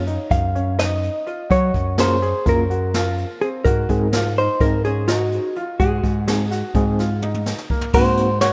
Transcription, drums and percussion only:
0.07 closed hi-hat
0.31 kick, closed hi-hat
0.55 closed hi-hat
0.79 snare, closed hi-hat
1.03 closed hi-hat
1.27 closed hi-hat
1.51 kick, closed hi-hat
1.74 kick, closed hi-hat
1.98 snare, closed hi-hat
2.23 closed hi-hat
2.46 kick, snare, closed hi-hat
2.71 closed hi-hat
2.94 snare, closed hi-hat
3.18 closed hi-hat
3.42 closed hi-hat
3.65 kick, closed hi-hat
3.89 kick, closed hi-hat
4.13 snare, closed hi-hat
4.37 closed hi-hat
4.61 kick, closed hi-hat
4.85 closed hi-hat
5.08 snare, closed hi-hat
5.32 closed hi-hat
5.56 closed hi-hat
5.80 kick, closed hi-hat
6.04 kick, closed hi-hat
6.28 snare, closed hi-hat
6.51 snare, closed hi-hat
6.75 kick, closed hi-hat
6.99 snare, closed hi-hat
7.22 high tom
7.34 high tom
7.46 snare
7.58 snare
7.70 kick
7.81 floor tom
7.93 kick, crash
8.17 closed hi-hat
8.41 snare, closed hi-hat

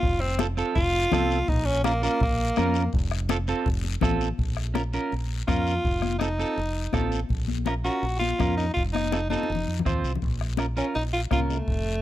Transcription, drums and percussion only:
0.03 bombo low, high conga, long guiro
0.39 bombo rim, high conga, short guiro
0.57 short guiro
0.75 bombo low, long guiro
0.94 high conga
1.12 bombo rim, high conga, low conga, short guiro
1.31 short guiro
1.48 bombo low, high conga, long guiro
1.84 bombo rim, high conga, short guiro
2.03 short guiro
2.20 bombo low, long guiro
2.39 high conga
2.56 bombo rim, high conga, short guiro
2.74 short guiro
2.93 bombo low, high conga, long guiro
3.11 bombo rim
3.29 bombo rim, high conga, short guiro
3.47 short guiro
3.66 bombo low, long guiro
3.84 high conga
4.01 bombo low, bombo rim, high conga, low conga, short guiro
4.21 short guiro
4.38 bombo low, high conga, long guiro
4.57 bombo rim
4.75 bombo rim, high conga, short guiro
4.93 short guiro
5.12 high conga, long guiro
5.48 bombo low, bombo rim, high conga, short guiro
5.67 short guiro
5.85 bombo low, high conga, long guiro
6.02 bombo rim, high conga
6.20 bombo rim, high conga, short guiro
6.40 short guiro
6.57 high conga, long guiro
6.93 bombo low, bombo rim, high conga, short guiro
7.12 short guiro
7.29 bombo low, high conga, long guiro
7.48 high conga
7.66 bombo rim, high conga, short guiro
7.85 short guiro
8.03 high conga, long guiro
8.21 high conga
8.40 bombo low, bombo rim, high conga, short guiro
8.59 short guiro
8.76 bombo low, high conga, long guiro
8.95 bombo rim, high conga
9.12 bombo rim, high conga, short guiro
9.30 high conga, short guiro
9.43 high conga
9.50 long guiro
9.55 low conga
9.79 low conga
9.86 bombo low, bombo rim, short guiro
10.04 short guiro
10.15 low conga
10.22 bombo low, high conga, long guiro
10.41 bombo rim
10.57 bombo rim, high conga, short guiro
10.77 short guiro
10.94 high conga, long guiro
11.31 bombo low, bombo rim, high conga, short guiro
11.50 short guiro
11.68 bombo low, high conga, long guiro

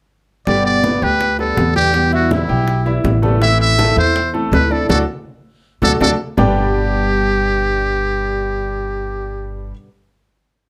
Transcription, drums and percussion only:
0.47 high bongo, high conga
0.66 high conga
0.84 high bongo, high conga
1.02 high bongo, high conga
1.21 high bongo, high conga
1.39 high bongo, high conga
1.57 high bongo, low bongo, high conga
1.76 high bongo, high conga
1.94 high bongo, high conga
2.13 high bongo, high conga
2.31 high bongo, high conga
2.50 high conga
2.68 high bongo, high conga
2.86 high bongo, high conga
3.05 high bongo, low bongo, high conga
3.23 high bongo, high conga
3.42 high bongo, high conga
3.79 high bongo, high conga
3.97 high bongo, high conga
4.16 high bongo, high conga
4.35 high bongo, high conga
4.53 high bongo, low bongo, high conga
4.71 high bongo
4.89 low bongo, high conga
5.82 low bongo, high conga
6.00 low bongo, high conga
6.38 low bongo, low conga

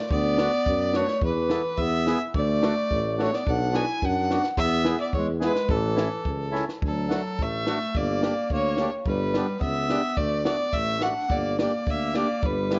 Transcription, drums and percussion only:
0.11 kick
0.38 snare
0.66 kick
0.93 snare
1.08 snare
1.21 kick
1.50 snare
1.78 kick
2.07 snare
2.34 kick
2.63 snare
2.91 kick
3.19 snare
3.34 snare
3.47 kick
3.75 snare
4.02 kick
4.30 snare
4.44 snare
4.57 kick
4.85 snare
5.13 kick
5.42 snare
5.56 snare
5.69 kick
5.98 snare
6.25 kick
6.55 snare
6.69 snare
6.82 kick
7.11 snare
7.39 kick
7.67 snare
7.81 snare
7.95 kick
8.23 snare
8.50 kick
8.77 snare
9.06 kick
9.34 snare
9.61 kick
9.89 snare
10.17 kick
10.45 snare
10.73 kick
11.01 snare
11.30 kick
11.59 snare
11.87 kick
12.14 snare
12.43 kick
12.71 snare

